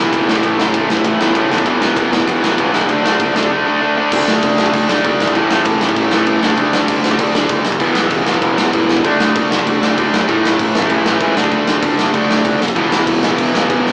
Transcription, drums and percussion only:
0.13 kick, ride
0.29 snare
0.35 kick
0.43 kick, ride
0.60 snare
0.74 kick, ride
0.90 snare
0.97 kick
1.05 kick, ride
1.21 snare
1.35 kick, ride
1.52 snare
1.58 kick
1.66 kick, ride
1.82 snare
1.96 kick, ride
2.13 snare
2.20 kick
2.28 kick, ride
2.44 snare
2.58 kick, ride
2.74 snare
2.81 kick
2.89 kick, ride
3.06 snare
3.20 kick, ride
3.36 snare
3.43 kick
4.12 kick, crash
4.28 snare
4.43 kick, crash
4.58 snare
4.66 kick
4.73 kick, crash
4.89 snare
5.05 kick, crash
5.20 snare
5.27 kick
5.35 kick, crash
5.51 snare
5.65 kick, crash
5.81 snare
5.89 kick
5.96 kick, crash
6.11 snare
6.26 kick, crash
6.43 snare
6.50 kick
6.57 kick, crash
6.73 snare
6.88 kick, crash
7.04 snare
7.11 kick
7.19 kick, crash
7.35 snare
7.49 kick, crash
7.65 snare
7.72 kick
7.80 kick, crash
7.95 snare
8.10 kick, crash
8.26 snare
8.34 kick
8.42 kick, crash
8.58 snare
8.73 kick, crash
8.89 snare
8.97 kick
9.05 kick, crash
9.20 snare
9.36 kick, crash
9.52 snare
9.59 kick
9.67 kick, crash
9.83 snare
9.98 kick, crash
10.14 snare
10.21 kick
10.29 kick, crash
10.45 snare
10.59 kick, crash
10.75 snare
10.82 kick
10.90 kick, crash
11.06 snare
11.20 kick, crash
11.37 snare
11.44 kick
11.52 kick, crash
11.67 snare
11.82 kick, crash
11.99 snare
12.06 kick
12.14 kick, crash
12.31 snare
12.45 kick, crash
12.62 snare
12.68 kick
12.76 kick, crash
12.92 snare
13.07 kick, crash
13.23 snare
13.30 kick
13.38 kick, crash
13.55 snare
13.70 kick, crash
13.86 snare

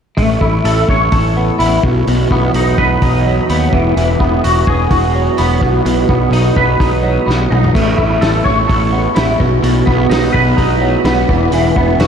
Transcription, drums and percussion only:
0.18 kick, open hi-hat
0.41 kick
0.65 open hi-hat
0.89 kick
1.12 kick, open hi-hat
1.60 open hi-hat
1.84 kick
2.07 open hi-hat
2.31 kick
2.54 open hi-hat
2.78 kick
3.02 kick, open hi-hat
3.49 open hi-hat
3.73 kick
3.97 open hi-hat
4.20 kick
4.44 open hi-hat
4.67 kick
4.91 kick, open hi-hat
5.38 open hi-hat
5.62 kick
5.86 open hi-hat
6.09 kick
6.33 open hi-hat
6.56 kick
6.80 kick, open hi-hat
7.30 snare
7.52 mid tom
7.64 floor tom
7.75 kick, open hi-hat, crash
7.99 kick
8.22 snare, open hi-hat
8.46 kick
8.70 kick, open hi-hat
9.16 snare, open hi-hat
9.40 kick
9.64 open hi-hat
9.87 kick
10.11 snare, open hi-hat
10.34 kick
10.58 kick, open hi-hat
11.05 snare, open hi-hat
11.29 kick
11.52 open hi-hat
11.76 kick
12.00 snare, open hi-hat

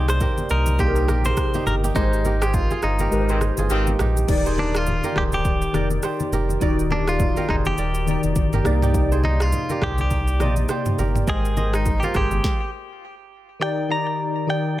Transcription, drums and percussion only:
0.08 cross-stick, shaker
0.20 kick, low conga, shaker
0.38 high conga, shaker
0.49 shaker
0.66 high conga, shaker
0.79 kick, shaker
0.96 shaker
1.08 cross-stick, high conga, shaker
1.25 high conga, shaker
1.37 kick, cross-stick, shaker
1.54 high conga, shaker
1.66 low conga, shaker
1.83 high conga, shaker
1.95 kick, shaker
2.13 shaker
2.25 high conga, shaker
2.42 cross-stick, shaker
2.54 kick, low conga, shaker
2.71 high conga, shaker
2.82 cross-stick, shaker
2.99 high conga, shaker
3.12 shaker
3.29 shaker
3.41 cross-stick, high conga, shaker
3.57 high conga, shaker
3.70 shaker
3.87 high conga, shaker
3.99 cross-stick, low conga, shaker
4.16 high conga, shaker
4.28 kick, crash, shaker
4.46 shaker
4.58 high conga
4.75 cross-stick, shaker
4.86 low conga, shaker
5.04 high conga, shaker
5.16 kick, cross-stick, low conga
5.32 high conga, shaker
5.45 kick, shaker
5.62 shaker
5.74 cross-stick, high conga, shaker
5.90 high conga, shaker
6.03 cross-stick, shaker
6.20 high conga, shaker
6.32 low conga, shaker
6.49 high conga, shaker
6.61 kick, shaker
6.79 shaker
6.91 high conga
7.08 cross-stick, shaker
7.20 kick, low conga, shaker
7.37 high conga, shaker
7.49 kick, cross-stick, low conga
7.65 high conga, shaker
7.78 shaker
7.94 shaker
8.07 high conga, shaker
8.23 high conga, shaker
8.36 kick, shaker
8.53 mid tom, high conga, shaker
8.65 cross-stick, low conga, shaker
8.82 mid tom, high conga, shaker
8.94 kick, shaker
9.12 shaker
9.24 high conga
9.40 cross-stick, shaker
9.52 low conga, shaker
9.69 high conga, shaker
9.82 kick, cross-stick, low conga
9.98 high conga, shaker
10.11 kick, shaker
10.28 shaker
10.40 cross-stick, high conga, shaker
10.56 high conga, shaker
10.69 cross-stick, shaker
10.86 mid tom, high conga, shaker
10.98 low conga, shaker
11.15 mid tom, high conga, shaker
11.27 kick, shaker
11.45 shaker
11.57 high conga, shaker
11.74 cross-stick, shaker
11.86 kick, low conga, shaker
12.03 high conga, shaker
12.14 kick, cross-stick, low conga, shaker
12.31 high conga, shaker
12.44 kick, snare

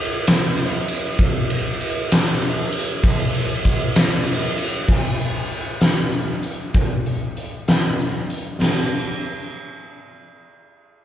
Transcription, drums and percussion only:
0.27 snare, ride
0.57 ride
0.88 ride
1.18 kick, ride
1.50 ride
1.81 ride
2.12 snare, ride
2.42 ride
2.72 ride
3.03 kick, ride
3.34 ride
3.65 kick, ride
3.96 snare, ride
4.27 ride
4.58 ride
4.88 kick, crash
5.19 closed hi-hat
5.50 closed hi-hat
5.81 snare, closed hi-hat
6.12 closed hi-hat
6.43 closed hi-hat
6.74 kick, closed hi-hat
7.06 closed hi-hat
7.37 closed hi-hat
7.68 snare, closed hi-hat
7.99 closed hi-hat
8.30 closed hi-hat
8.61 snare, crash

